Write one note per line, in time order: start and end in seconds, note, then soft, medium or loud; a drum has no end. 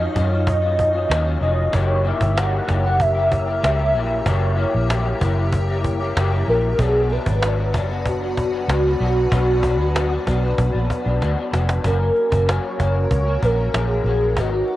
0.00 0.14 F#3 soft
0.00 0.15 C#4 medium
0.00 1.69 D#4 medium
0.00 0.15 F4 medium
0.00 6.75 C#5 medium
0.00 0.48 D#5 loud
0.00 1.69 D#5 medium
0.00 1.70 C#6 medium
0.14 1.07 F#2 medium
0.14 0.31 D#3 medium
0.14 0.31 F#3 medium
0.14 0.30 C#4 medium
0.14 cajon bass loud
0.14 cajon slap soft
0.18 0.28 F4 medium
0.29 0.64 F#3 soft
0.29 0.63 C#4 medium
0.29 0.61 F4 medium
0.29 cajon slap soft
0.47 1.39 D#5 loud
0.47 cajon bass loud
0.62 0.96 F#3 soft
0.62 0.94 C#4 medium
0.62 0.92 F4 medium
0.79 cajon bass medium
0.93 1.09 C#4 soft
0.93 1.10 F4 medium
0.93 cajon slap soft
0.97 1.09 F#3 soft
1.09 1.35 D#2 medium
1.09 1.26 D#3 medium
1.09 1.26 F#3 medium
1.09 1.25 C#4 medium
1.09 1.23 F4 medium
1.09 cajon slap loud
1.24 1.40 F#3 soft
1.24 1.42 C#4 medium
1.24 1.41 F4 medium
1.24 cajon slap soft
1.40 1.67 F1 medium
1.40 1.73 D#3 medium
1.40 1.71 F#3 medium
1.40 1.73 C#4 medium
1.40 1.76 D#5 loud
1.40 cajon slap soft
1.44 1.74 F4 medium
1.58 cajon slap soft
1.72 2.11 F#1 loud
1.72 2.02 F#3 medium
1.72 2.04 A#3 medium
1.72 2.05 E4 medium
1.72 6.75 G4 medium
1.72 2.06 G4 medium
1.72 2.08 C#5 loud
1.72 6.75 E5 medium
1.72 6.75 A#5 medium
1.72 cajon bass loud
2.04 2.20 F#3 medium
2.04 2.21 A#3 medium
2.04 2.21 E4 medium
2.04 2.19 G4 medium
2.04 2.39 E5 loud
2.04 cajon slap soft
2.20 2.59 G1 medium
2.20 2.36 E4 soft
2.20 2.36 G4 medium
2.20 cajon bass loud
2.24 2.35 A#3 soft
2.36 2.66 F#3 medium
2.36 2.67 A#3 medium
2.36 2.68 E4 medium
2.36 2.69 G4 medium
2.36 2.85 F#5 loud
2.36 cajon slap loud
2.67 3.59 F#1 loud
2.67 2.84 F#3 medium
2.67 2.84 A#3 medium
2.67 2.84 E4 medium
2.67 cajon bass loud
2.67 cajon slap soft
2.71 2.82 G4 medium
2.83 3.15 E4 soft
2.83 3.13 G4 medium
2.83 3.03 F#5 loud
2.83 cajon slap soft
2.87 3.17 A#3 soft
3.00 3.63 E5 loud
3.00 cajon bass loud
3.15 3.49 A#3 soft
3.15 3.47 E4 soft
3.15 3.45 G4 medium
3.32 cajon bass medium
3.46 3.62 A#3 soft
3.46 3.63 E4 soft
3.46 3.63 G4 medium
3.46 cajon slap soft
3.62 3.96 C#2 medium
3.62 3.79 F#3 medium
3.62 3.79 A#3 medium
3.62 3.79 E4 medium
3.62 3.77 G4 medium
3.62 4.30 E5 loud
3.62 cajon slap loud
3.78 3.94 A#3 soft
3.78 3.96 E4 medium
3.78 3.94 G4 medium
3.94 4.21 A#1 medium
3.94 4.25 F#3 medium
3.94 4.26 A#3 medium
3.94 4.26 E4 medium
3.94 4.27 G4 medium
3.94 cajon slap soft
4.10 cajon slap soft
4.26 4.64 F#1 loud
4.26 4.55 F#3 medium
4.26 4.57 A#3 medium
4.26 4.58 E4 medium
4.26 4.59 G4 medium
4.26 4.90 C#5 loud
4.26 cajon bass loud
4.56 4.73 F#3 medium
4.56 4.74 A#3 medium
4.56 4.73 E4 medium
4.56 cajon slap soft
4.60 4.70 G4 medium
4.72 5.12 A#1 medium
4.72 4.89 E4 soft
4.72 4.88 G4 medium
4.72 cajon slap soft
4.76 4.88 A#3 soft
4.88 5.18 F#3 medium
4.88 5.20 A#3 medium
4.88 5.21 E4 medium
4.88 5.22 G4 medium
4.88 cajon slap loud
5.20 6.12 F#1 loud
5.20 5.36 F#3 medium
5.20 5.37 A#3 medium
5.20 5.37 E4 medium
5.20 5.34 G4 medium
5.20 cajon bass loud
5.20 cajon slap soft
5.36 5.70 A#3 soft
5.36 5.68 E4 medium
5.36 5.66 G4 medium
5.36 cajon slap soft
5.53 cajon bass loud
5.68 6.02 A#3 soft
5.68 6.01 E4 medium
5.68 5.98 G4 medium
5.84 cajon bass medium
6.00 6.16 E4 medium
6.00 6.16 G4 medium
6.00 cajon slap soft
6.04 6.16 A#3 soft
6.16 6.42 F#1 medium
6.16 6.32 F#3 medium
6.16 6.32 A#3 medium
6.16 6.32 E4 medium
6.16 6.30 G4 loud
6.16 cajon slap loud
6.31 6.47 A#3 soft
6.31 6.48 E4 medium
6.31 6.47 G4 medium
6.47 6.73 A#1 medium
6.47 6.78 F#3 medium
6.47 6.79 A#3 medium
6.47 6.80 E4 medium
6.47 6.81 G4 medium
6.47 6.81 A#4 medium
6.47 cajon slap soft
6.63 cajon slap soft
6.78 7.17 B1 loud
6.78 7.08 B2 medium
6.78 7.10 F#3 medium
6.78 7.11 B3 medium
6.78 7.11 D4 medium
6.78 11.80 F#4 medium
6.78 7.13 G#4 loud
6.78 11.80 B4 medium
6.78 11.80 D5 medium
6.78 11.80 B5 medium
6.78 cajon bass loud
7.09 7.26 B2 medium
7.09 7.27 F#3 medium
7.09 7.26 B3 medium
7.09 7.74 B4 loud
7.09 cajon slap soft
7.13 7.24 D4 medium
7.26 7.74 G#1 medium
7.26 7.41 F#3 soft
7.26 7.43 B3 medium
7.26 7.42 D4 medium
7.26 cajon bass medium
7.42 7.58 B2 medium
7.42 7.58 F#3 medium
7.42 7.58 B3 medium
7.42 7.55 D4 medium
7.42 cajon slap loud
7.56 7.74 B3 soft
7.56 7.73 D4 soft
7.61 7.73 F#3 soft
7.73 8.65 F#1 medium
7.73 7.89 B2 medium
7.73 7.90 F#3 medium
7.73 7.90 B3 medium
7.73 7.87 D4 medium
7.73 cajon bass loud
7.73 cajon slap soft
7.89 8.21 B3 medium
7.89 8.19 D4 medium
7.89 cajon slap soft
7.93 8.23 F#3 soft
8.05 11.18 F#4 loud
8.05 cajon bass loud
8.20 8.52 B3 soft
8.20 8.51 D4 medium
8.24 8.54 F#3 soft
8.37 cajon bass medium
8.52 8.68 F#3 soft
8.52 8.69 B3 medium
8.52 8.68 D4 medium
8.52 cajon slap soft
8.68 8.94 C#2 medium
8.68 8.84 B2 medium
8.68 8.85 F#3 medium
8.68 8.85 B3 medium
8.68 8.83 D4 medium
8.68 cajon slap loud
8.84 9.00 F#3 medium
8.84 9.01 B3 medium
8.84 9.00 D4 medium
8.99 9.26 B1 medium
8.99 9.30 B2 medium
8.99 9.31 F#3 medium
8.99 9.32 B3 medium
8.99 9.33 D4 medium
8.99 cajon slap soft
9.16 cajon slap soft
9.31 9.79 B1 loud
9.31 9.62 B2 medium
9.31 9.63 F#3 medium
9.31 9.64 B3 medium
9.31 9.64 D4 loud
9.31 cajon bass loud
9.48 cajon slap soft
9.63 9.79 B2 medium
9.63 9.80 F#3 medium
9.63 9.79 B3 medium
9.63 9.77 D4 medium
9.63 cajon bass medium
9.79 10.17 D2 medium
9.79 9.94 F#3 soft
9.79 9.95 B3 medium
9.79 9.95 D4 medium
9.79 cajon slap soft
9.94 10.10 B2 medium
9.94 10.11 F#3 medium
9.94 10.11 B3 loud
9.94 10.09 D4 loud
9.94 cajon slap loud
10.10 10.26 F#3 soft
10.10 10.27 B3 medium
10.10 10.26 D4 medium
10.10 cajon slap soft
10.26 10.52 B1 loud
10.26 10.42 B2 medium
10.26 10.43 F#3 medium
10.26 10.42 B3 medium
10.26 10.40 D4 medium
10.26 cajon bass medium
10.26 cajon slap soft
10.42 10.75 F#3 soft
10.42 10.73 B3 medium
10.42 10.71 D4 medium
10.42 cajon slap soft
10.58 10.71 B1 loud
10.58 cajon bass loud
10.72 10.87 A#1 medium
10.72 11.06 B3 medium
10.72 11.03 D4 medium
10.72 cajon slap soft
10.77 11.07 F#3 medium
10.90 cajon bass medium
11.04 11.18 B1 medium
11.04 11.20 F#3 medium
11.04 11.21 B3 medium
11.04 11.21 D4 medium
11.04 cajon slap soft
11.21 11.34 D2 medium
11.21 11.37 B2 medium
11.21 11.37 F#3 medium
11.21 11.37 B3 medium
11.21 11.35 D4 loud
11.21 cajon slap medium
11.36 11.52 F#3 medium
11.36 11.53 B3 medium
11.36 11.53 D4 medium
11.36 cajon slap soft
11.51 11.78 F1 medium
11.51 11.84 B2 medium
11.51 11.83 F#3 medium
11.51 11.85 B3 medium
11.51 cajon slap medium
11.55 11.86 D4 medium
11.69 cajon slap medium
11.84 12.09 F#1 medium
11.84 12.00 F#2 medium
11.84 12.00 F#3 medium
11.84 12.00 A#3 medium
11.84 11.98 C#4 medium
11.84 14.76 F#4 medium
11.84 14.34 A#4 medium
11.84 12.51 A#4 loud
11.84 14.35 C#5 medium
11.84 14.34 A#5 medium
11.84 cajon bass loud
11.99 12.33 F#3 soft
11.99 12.32 A#3 soft
11.99 12.29 C#4 soft
12.16 cajon slap soft
12.31 12.57 F#1 medium
12.31 12.47 F#3 soft
12.31 12.47 A#3 soft
12.31 12.47 C#4 medium
12.31 cajon bass medium
12.46 12.76 F#2 medium
12.46 12.78 F#3 medium
12.46 12.79 A#3 medium
12.46 12.80 C#4 medium
12.46 13.12 C#5 loud
12.46 cajon slap loud
12.77 13.05 F#1 loud
12.77 13.26 F#2 medium
12.77 13.26 F#3 medium
12.77 13.26 A#3 medium
12.77 13.24 C#4 medium
12.77 cajon bass medium
12.77 cajon slap soft
12.95 cajon slap soft
13.11 13.36 C#2 medium
13.11 13.41 C#5 loud
13.11 cajon bass medium
13.25 13.40 F#3 soft
13.25 13.42 A#3 soft
13.25 13.41 C#4 soft
13.40 13.68 A#1 medium
13.40 13.57 F#2 medium
13.40 13.58 F#3 medium
13.40 13.58 A#3 medium
13.40 13.56 C#4 medium
13.40 13.69 A#4 medium
13.40 cajon bass medium
13.57 13.73 F#3 soft
13.57 13.74 A#3 soft
13.57 13.73 C#4 soft
13.69 13.78 A#4 medium
13.73 13.99 A#1 medium
13.73 14.03 F#2 medium
13.73 14.05 F#3 medium
13.73 14.06 A#3 medium
13.73 14.06 C#4 medium
13.73 14.42 G#4 medium
13.73 cajon slap loud
14.04 14.36 A#1 medium
14.04 14.35 F#2 medium
14.04 14.35 F#3 medium
14.04 14.37 A#3 medium
14.04 cajon slap soft
14.09 14.38 C#4 medium
14.21 cajon slap soft
14.36 14.62 G#1 loud
14.36 14.52 G#2 medium
14.36 14.53 F#3 medium
14.36 14.53 B3 medium
14.36 14.50 D#4 medium
14.36 14.76 B4 medium
14.36 14.76 D#5 medium
14.36 14.76 G#5 medium
14.36 cajon bass loud
14.40 14.76 F#4 loud
14.52 14.76 F#3 soft
14.52 14.76 B3 soft
14.52 14.76 D#4 soft
14.68 cajon slap soft